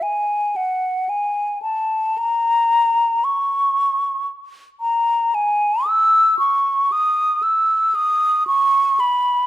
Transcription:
0.02 G#5
0.56 F#5
1.09 G#5
1.62 A5
2.18 A#5
3.24 C#6
4.81 A#5
5.34 G#5
5.87 E6
6.39 C#6
6.92 D#6
7.43 E6
7.95 D#6
8.47 C#6
9.00 B5

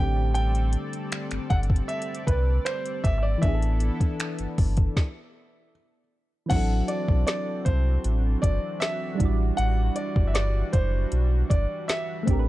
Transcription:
Already playing: A1 D3 G3 A3 C4 A4 D5 G5
0.00 C4 G4
0.34 G5, closed hi-hat
0.55 closed hi-hat
0.73 closed hi-hat
0.93 closed hi-hat
1.12 finger snap, closed hi-hat
1.31 G1, finger snap, closed hi-hat
1.50 G1 F#5, kick, closed hi-hat
1.63 closed hi-hat
1.70 kick
1.76 closed hi-hat
1.88 E5, closed hi-hat
2.02 closed hi-hat
2.15 closed hi-hat
2.27 C2 B4, kick, closed hi-hat
2.65 C5, finger snap, closed hi-hat
2.86 closed hi-hat
3.04 G#1 E5, kick, closed hi-hat
3.18 E5
3.23 D5
3.38 E3 B3 E5
3.43 A1 B3 D4 E4 A4, kick, closed hi-hat
3.48 G#4
3.55 A4
3.62 closed hi-hat
3.80 closed hi-hat
4.01 kick, closed hi-hat
4.20 finger snap, closed hi-hat
4.39 G1, closed hi-hat
4.58 G1, kick, open hi-hat
4.77 kick, closed hi-hat
4.97 kick, snare
6.46 E3 C4 F#5
6.51 A1 E3 F#3 C4 D4 E4 F#4, kick, closed hi-hat, crash
6.56 A4
6.88 D5, closed hi-hat
7.08 B1, kick
7.27 D5, snare, closed hi-hat
7.65 C2 C5, kick, closed hi-hat
8.04 A1, closed hi-hat
8.42 G1 D5, kick, closed hi-hat
8.80 E5, snare, closed hi-hat
9.15 G3 D4
9.20 A1 G3 E4 F#4, kick, closed hi-hat
9.25 D5
9.57 A1 F#5, closed hi-hat
9.96 D5, closed hi-hat
10.16 G1, kick
10.28 E5
10.34 D5, snare, closed hi-hat
10.73 F#1 C5, kick, closed hi-hat
11.12 B1, closed hi-hat
11.50 G1 D5, kick, closed hi-hat
11.88 E5, snare, closed hi-hat
12.23 A3 C4
12.27 A1 D3 C4 D4 G4 B4, kick, closed hi-hat
12.33 A#4
12.39 B4

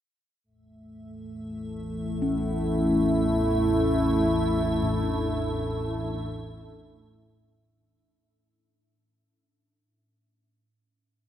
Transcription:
0.44 A1 E2 A3 E5
1.41 E4
2.22 C#4
3.45 A4
4.83 A2

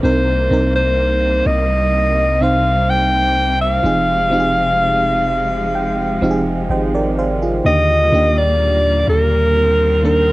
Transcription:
Already playing: A#3
0.02 C2 C3 G3 C4 D#4 A#4 C5
0.50 C2 C3 C4 D#4 A#4
0.75 C5
1.46 C2 D#5
2.40 C3 C4 D#4 C5 F5
2.90 G5
3.61 F5
3.83 F1 F3 G#3 C4 D#4 G#4
4.30 F3 C4 D#4 G4
4.40 G#4
5.27 F5
5.75 G5
6.21 F1 F3 C4 D#4 G4 F5
6.31 G#4
6.69 G#1 C5 D#5 G5
6.94 A#4 D5
7.18 G#4 C5 F5
7.42 F4 G#4
7.64 D#2 A#2 D3 D#3 G3 A#3 G4 D#5
8.12 D#2 D#3 A#3 D4 G4
8.38 D5
9.07 D#2 A#4
9.55 C4
10.02 D#3 A#3 D4 A#4

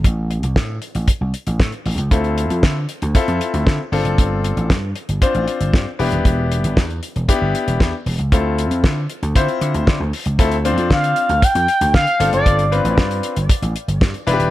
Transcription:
0.04 A1, kick, closed hi-hat
0.31 closed hi-hat
0.43 C2, closed hi-hat
0.56 A2, kick, snare
0.82 closed hi-hat
0.95 A1, closed hi-hat
1.08 kick, closed hi-hat
1.21 C2
1.34 closed hi-hat
1.47 A1, closed hi-hat
1.60 A2, kick, snare
1.72 closed hi-hat
1.86 A1, open hi-hat
1.98 C#2, closed hi-hat
2.11 D2 C4 E4 F4 A4, kick, closed hi-hat
2.24 closed hi-hat
2.38 closed hi-hat
2.50 F2, closed hi-hat
2.63 D3, kick, snare
2.89 closed hi-hat
3.02 D2, closed hi-hat
3.15 C4 E4 F4 A4, kick, closed hi-hat
3.28 F2, closed hi-hat
3.41 closed hi-hat
3.54 D2, closed hi-hat
3.67 D3, kick, snare
3.92 G1 C4 D4 F4 A4, open hi-hat
4.05 F#1, closed hi-hat
4.18 G1, kick, closed hi-hat
4.44 closed hi-hat
4.57 A1, closed hi-hat
4.70 G2, kick, snare
4.96 closed hi-hat
5.09 G1, closed hi-hat
5.22 C4 D4 F4 C5, kick, closed hi-hat
5.35 A1, closed hi-hat
5.48 closed hi-hat
5.60 G1, closed hi-hat
5.74 G2, kick, snare
5.99 E1 B3 D4 E4 G4, open hi-hat
6.12 D#1, closed hi-hat
6.25 E1, kick, closed hi-hat
6.52 closed hi-hat
6.64 G1, closed hi-hat
6.77 E2, kick, snare
6.90 closed hi-hat
7.03 closed hi-hat
7.16 E1, closed hi-hat
7.28 B3 D4 E4 G4, kick, closed hi-hat
7.41 G1
7.55 closed hi-hat
7.67 E1, closed hi-hat
7.80 E2, kick, snare
8.06 E1, open hi-hat
8.19 C#2, closed hi-hat
8.32 D2 C4 E4 F4 A4, kick, closed hi-hat
8.58 closed hi-hat
8.71 F2, closed hi-hat
8.84 D3, kick, snare
9.10 closed hi-hat
9.23 D2, closed hi-hat
9.36 D3 C4 E4 F4 C5, kick, closed hi-hat
9.49 closed hi-hat
9.61 D3, closed hi-hat
9.74 D2, closed hi-hat
9.87 D3, kick, snare
10.00 D2
10.13 open hi-hat
10.26 C#2, closed hi-hat
10.39 D2 C4 E4 F4 A4, kick, closed hi-hat
10.52 closed hi-hat
10.65 C4 D4 F4 C5, closed hi-hat
10.78 F2, closed hi-hat
10.90 D3 F5, kick, snare
11.04 closed hi-hat
11.16 closed hi-hat
11.29 D2, closed hi-hat
11.42 G5, kick, closed hi-hat
11.55 F2, closed hi-hat
11.68 closed hi-hat
11.81 D2, closed hi-hat
11.94 D3 F5, kick, snare
12.07 closed hi-hat
12.19 G1 C4 D4 F4 A4, closed hi-hat
12.33 F#1 D5, closed hi-hat
12.46 G1, kick, closed hi-hat
12.59 closed hi-hat
12.71 C4 D4 F4 B4, closed hi-hat
12.84 A1, closed hi-hat
12.98 G2, kick, snare
13.11 closed hi-hat
13.23 closed hi-hat
13.36 G1, closed hi-hat
13.49 kick, closed hi-hat
13.62 A1, closed hi-hat
13.76 closed hi-hat
13.88 G1, closed hi-hat
14.01 G2, kick, snare
14.14 closed hi-hat
14.27 E1 D4 E4 F4 B4, closed hi-hat
14.33 G4
14.40 D#1, closed hi-hat

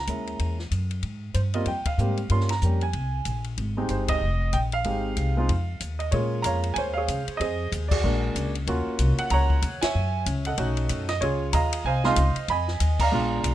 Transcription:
Already playing: A#5
0.07 D#2 G#3 A#3 C#4 E4, kick, hi-hat pedal, ride
0.27 ride
0.39 E2, kick, ride
0.59 snare
0.71 F#2, kick, hi-hat pedal, ride
0.91 ride
1.03 G#2, kick, ride
1.34 G2 C5, kick, hi-hat pedal, ride
1.54 G3 A#3 C4 F4 D#5, ride
1.66 F2 G5, kick, ride
1.85 F5, muted upright bass stroke, kick, ride
1.98 G#2 G3 A#3 C4 G4, hi-hat pedal
2.17 ride
2.30 G2 G3 A#3 C#4 F4 C6, kick, ride
2.40 snare
2.49 A#5, snare, ride
2.62 F2 G3 A#3 C#4 G4, kick, hi-hat pedal
2.81 G#5, ride
2.93 C2, kick, ride
3.25 A#1, kick, hi-hat pedal, ride
3.44 ride
3.57 G#1, kick, ride
3.77 G#3 C4 D#4 G4
3.89 G1 C5, kick, hi-hat pedal, ride
4.08 D#5, kick, ride
4.21 F1
4.53 A#1 G5, kick, hi-hat pedal, ride
4.72 F5, ride
4.84 G#1 G#3 C4 D#4 G4, kick, ride
5.17 C2, kick, hi-hat pedal, ride
5.37 G#3 C4 D#4 F4
5.49 F2, kick, ride
5.80 D#2, kick, hi-hat pedal, ride
5.99 D#5, ride
6.12 A#2 G#3 A#3 C#4 F4 G#4 C#5, kick, ride
6.42 F2 C#5 F5 A#5, kick, hi-hat pedal, ride
6.64 ride
6.74 D#2 C5 C#5 G#5, kick, ride
6.94 C#5 F5
6.98 G#4
7.08 C#2, kick, hi-hat pedal, ride
7.28 muted upright bass stroke, ride
7.37 F2 G#4 D#5, kick, ride
7.41 C5
7.72 D#2, kick, hi-hat pedal, ride
7.88 F#4 G#4 D5, kick, crash
8.04 A#1 G#3 A#3 D4 F#4
8.35 C#2, kick, hi-hat pedal, ride
8.55 ride
8.67 D#2 A#3 C#4 F4 F#4, kick, ride
8.99 C2, kick, hi-hat pedal, ride
9.18 F#5, muted upright bass stroke, ride
9.30 C#2 C#5 F#5 A#5, kick, ride
9.50 kick
9.62 D#2, kick, hi-hat pedal, ride
9.81 C#5 E5 G#5, muted upright bass stroke, snare, ride
9.95 F#2
10.26 C#2, kick, hi-hat pedal, ride
10.45 A4 D#5 F#5, ride
10.57 B1 A3 C#4 D#4 F#4, kick, ride
10.77 ride
10.89 F#2, kick, hi-hat pedal, ride
11.09 D#5, snare, ride
11.21 C#2 F4 G#4 C#5, kick, ride
11.53 D#2 D#5 F5 A#5, kick, hi-hat pedal, ride
11.73 ride
11.84 C2 C5 F5 G#5, kick
12.04 G#3 C4 D#4 F4 D#5 F5 C6, snare
12.16 C#2, kick, hi-hat pedal, ride
12.36 muted upright bass stroke, ride
12.48 F2 D#5 G#5 B5, kick, ride
12.68 snare
12.80 D#2, kick, hi-hat pedal, ride
13.00 D5 F5 A#5, kick, crash
13.12 A#1 G#3 B3 D4 F4
13.44 B1, kick, hi-hat pedal, ride

